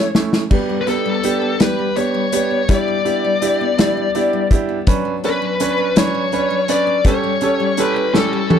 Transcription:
Already playing: lead electric guitar C#5
0.15 grand piano A3 C#4 E4, snare
0.33 snare
0.50 steel-string acoustic guitar G3, grand piano B3 D4 G4, kick, crash
0.69 steel-string acoustic guitar G3
0.81 lead electric guitar B4
0.87 steel-string acoustic guitar B3, grand piano B3 D4 G4, lead electric guitar A4, closed hi-hat
1.05 steel-string acoustic guitar G3
1.23 grand piano B3 D4 G4, steel-string acoustic guitar D4, closed hi-hat
1.42 steel-string acoustic guitar B3
1.60 steel-string acoustic guitar G3, grand piano B3 D4 G4, lead electric guitar B4, snare, closed hi-hat
1.79 steel-string acoustic guitar G3
1.96 grand piano B3 D4 G4, steel-string acoustic guitar B3, lead electric guitar C#5, closed hi-hat
2.14 steel-string acoustic guitar G3
2.32 grand piano B3 D4 G4, steel-string acoustic guitar D4, closed hi-hat
2.51 steel-string acoustic guitar B3
2.69 steel-string acoustic guitar G3, grand piano D4 E4 G4, lead electric guitar D5, kick, closed hi-hat
2.88 steel-string acoustic guitar G3
3.05 steel-string acoustic guitar B3, grand piano D4 E4 G4, closed hi-hat
3.24 steel-string acoustic guitar G3
3.41 grand piano D4 E4 G4, steel-string acoustic guitar D4, closed hi-hat
3.61 steel-string acoustic guitar B3
3.78 steel-string acoustic guitar G3, grand piano D4 E4 G4, snare, closed hi-hat
3.97 steel-string acoustic guitar G3
4.15 steel-string acoustic guitar B3, grand piano D4 E4 G4, closed hi-hat
4.33 steel-string acoustic guitar G3
4.51 grand piano D4 E4 G4, steel-string acoustic guitar D4, kick, closed hi-hat
4.69 steel-string acoustic guitar B3
4.87 steel-string acoustic guitar F#3, grand piano C#4 D4 B4, kick, closed hi-hat
5.05 steel-string acoustic guitar F#3
5.24 steel-string acoustic guitar C#4, grand piano C#4 D4 B4, lead electric guitar B4, closed hi-hat
5.42 steel-string acoustic guitar F#3
5.60 grand piano C#4 D4 B4, steel-string acoustic guitar D4, closed hi-hat
5.78 steel-string acoustic guitar C#4
5.96 steel-string acoustic guitar F#3, grand piano C#4 D4 B4, lead electric guitar C#5, snare, closed hi-hat
6.14 steel-string acoustic guitar F#3
6.32 steel-string acoustic guitar C#4, grand piano C#4 D4 B4, closed hi-hat
6.50 steel-string acoustic guitar F#3
6.68 grand piano C#4 D4 B4, steel-string acoustic guitar D4, lead electric guitar D5, closed hi-hat
6.87 steel-string acoustic guitar C#4
7.05 steel-string acoustic guitar G3, grand piano C#4 G4 A4, lead electric guitar C#5, kick, closed hi-hat
7.24 steel-string acoustic guitar G3
7.41 steel-string acoustic guitar C#4, grand piano C#4 G4 A4, closed hi-hat
7.60 steel-string acoustic guitar G3
7.77 grand piano C#4 G4 A4, steel-string acoustic guitar E4, lead electric guitar B4, closed hi-hat
7.96 steel-string acoustic guitar C#4
8.14 steel-string acoustic guitar G3, grand piano C#4 G4 A4, lead electric guitar A4, snare
8.33 steel-string acoustic guitar G3
8.50 grand piano C#4 G4 A4, steel-string acoustic guitar C#4, high tom

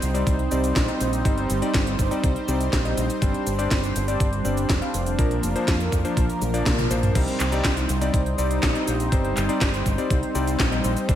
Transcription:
Already playing: analog synth pad G3 C4 D#4 C5
0.02 fingered electric bass C2, closed hi-hat, cabasa
0.14 electric grand piano G3 C4 D#4 D5, closed hi-hat, cabasa
0.27 fingered electric bass C2, kick, closed hi-hat, cabasa
0.39 closed hi-hat
0.51 fingered electric bass C2, electric grand piano G3 C4 D#4 D5, cabasa
0.64 closed hi-hat, cabasa
0.76 fingered electric bass A#1, kick, snare, closed hi-hat, cabasa
0.88 electric grand piano G3 C4 D#4 D#5, closed hi-hat
1.01 fingered electric bass A#1, closed hi-hat, cabasa
1.13 closed hi-hat, cabasa
1.25 fingered electric bass G1, electric grand piano G3 C4 D#4 C5, kick, closed hi-hat, cabasa
1.38 closed hi-hat
1.50 fingered electric bass G1, closed hi-hat, cabasa
1.62 electric grand piano G3 C4 D#4 D5, closed hi-hat, cabasa
1.74 fingered electric bass G1, kick, snare, closed hi-hat, cabasa
1.87 closed hi-hat, cabasa
1.99 fingered electric bass G1, kick, closed hi-hat, cabasa
2.11 electric grand piano G3 C4 D#4 D5, closed hi-hat, cabasa
2.24 fingered electric bass C2, kick, closed hi-hat, cabasa
2.36 closed hi-hat
2.48 fingered electric bass C2, electric grand piano G3 C4 D#4 D5, cabasa
2.61 closed hi-hat, cabasa
2.73 fingered electric bass A#1, kick, snare, closed hi-hat, cabasa
2.85 electric grand piano G3 C4 D#4 D#5, closed hi-hat
2.97 fingered electric bass A#1, closed hi-hat, cabasa
3.10 closed hi-hat, cabasa
3.22 fingered electric bass G1, electric grand piano G3 C4 D4 C5, analog synth pad G3 D4, kick, closed hi-hat, cabasa
3.34 closed hi-hat
3.46 fingered electric bass G1, closed hi-hat, cabasa
3.59 electric grand piano G3 C4 D4 D5, closed hi-hat, cabasa
3.71 fingered electric bass G1, kick, snare, closed hi-hat, cabasa
3.84 closed hi-hat, cabasa
3.96 fingered electric bass G1, closed hi-hat, cabasa
4.08 electric grand piano G3 C4 D4 D5, closed hi-hat, cabasa
4.20 fingered electric bass G1, kick, closed hi-hat, cabasa
4.33 closed hi-hat
4.45 fingered electric bass G1, electric grand piano G3 C4 D4 D5, cabasa
4.57 closed hi-hat, cabasa
4.69 fingered electric bass F1, kick, snare, closed hi-hat, cabasa
4.82 electric grand piano G3 C4 D4 F5, closed hi-hat
4.94 fingered electric bass F1, closed hi-hat, cabasa
5.06 closed hi-hat, cabasa
5.18 fingered electric bass A#1, electric grand piano F3 A#3 D4 A#4, analog synth pad F3 A#3 A#4, kick, closed hi-hat, cabasa
5.31 closed hi-hat
5.43 fingered electric bass F1, closed hi-hat, cabasa
5.55 electric grand piano F3 A#3 D4 C5, closed hi-hat, cabasa
5.68 fingered electric bass F2, kick, snare, closed hi-hat, cabasa
5.80 closed hi-hat, cabasa
5.92 fingered electric bass F2, kick, closed hi-hat, cabasa
6.05 electric grand piano F3 A#3 D4 C5, closed hi-hat, cabasa
6.17 fingered electric bass A#1, kick, closed hi-hat, cabasa
6.30 closed hi-hat, cabasa
6.42 fingered electric bass A#1, closed hi-hat, high tom, cabasa
6.54 electric grand piano F3 A#3 D4 D5, closed hi-hat, cabasa
6.66 fingered electric bass A#1, kick, snare, closed hi-hat, mid tom, cabasa
6.78 electric grand piano F3 A#3 D4 A#4, closed hi-hat, mid tom, cabasa
6.91 fingered electric bass A#1, electric grand piano F3 A#3 D4 C5, closed hi-hat, cabasa
7.03 closed hi-hat, mid tom, cabasa
7.15 fingered electric bass C2, electric grand piano G3 C4 D#4 C5, analog synth pad G3 C4 D#4 C5, kick, closed hi-hat, crash, cabasa
7.28 closed hi-hat
7.40 fingered electric bass C2, clap, closed hi-hat, cabasa
7.52 electric grand piano G3 C4 D#4 D5, closed hi-hat, cabasa
7.65 fingered electric bass C2, kick, snare, clap, closed hi-hat, cabasa
7.77 closed hi-hat, cabasa
7.89 fingered electric bass C2, closed hi-hat, cabasa
8.01 electric grand piano G3 C4 D#4 D5, closed hi-hat, cabasa
8.14 fingered electric bass C2, kick, closed hi-hat, cabasa
8.26 closed hi-hat
8.38 fingered electric bass C2, electric grand piano G3 C4 D#4 D5, cabasa
8.51 closed hi-hat, cabasa
8.63 fingered electric bass A#1, kick, snare, clap, closed hi-hat, cabasa
8.75 electric grand piano G3 C4 D#4 D#5, closed hi-hat
8.88 fingered electric bass A#1, closed hi-hat, cabasa
9.00 closed hi-hat, cabasa
9.12 fingered electric bass G1, electric grand piano G3 C4 D#4 C5, kick, closed hi-hat, cabasa
9.25 closed hi-hat
9.37 fingered electric bass G1, clap, closed hi-hat, cabasa
9.49 electric grand piano G3 C4 D#4 D5, closed hi-hat, cabasa
9.61 fingered electric bass G1, kick, snare, clap, closed hi-hat, cabasa
9.74 closed hi-hat, cabasa
9.86 fingered electric bass G1, kick, closed hi-hat, cabasa
9.98 electric grand piano G3 C4 D#4 D5, closed hi-hat, cabasa
10.10 fingered electric bass C2, kick, closed hi-hat, cabasa
10.23 closed hi-hat
10.35 fingered electric bass C2, electric grand piano G3 C4 D#4 D5, cabasa
10.47 closed hi-hat, cabasa
10.60 fingered electric bass A#1, kick, snare, clap, closed hi-hat, cabasa
10.72 electric grand piano G3 C4 D#4 D#5, closed hi-hat
10.84 fingered electric bass A#1, closed hi-hat, cabasa
10.97 closed hi-hat, cabasa
11.09 fingered electric bass G1, electric grand piano G3 C4 D4 C5, analog synth pad D4, kick, closed hi-hat, cabasa

